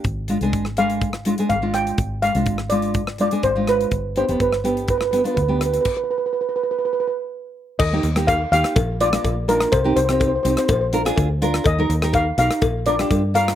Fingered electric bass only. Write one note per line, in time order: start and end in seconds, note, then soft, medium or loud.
0.04 0.36 G#1 medium
0.41 0.51 C2 medium
0.53 1.35 G#1 medium
1.50 1.91 G#1 medium
1.98 2.29 G#1 medium
2.35 2.45 C2 medium
2.46 3.28 G#1 medium
3.43 3.84 G#1 medium
3.91 4.23 G1 medium
4.29 4.39 F1 medium
4.40 5.22 G1 medium
5.37 5.78 D2 medium
7.80 8.00 D#2 medium
8.03 8.44 D#2 medium
8.52 8.62 D#2 medium
8.76 9.17 A#1 medium
9.24 9.65 A#1 loud
9.73 9.93 C2 loud
9.96 10.37 C2 medium
10.45 10.55 C2 medium
10.69 11.10 A#1 medium
11.17 11.58 D2 medium
11.66 11.86 D#2 loud
11.89 12.31 D#2 medium
12.38 12.49 B1 medium
12.62 13.03 A#1 medium
13.11 13.52 G2 medium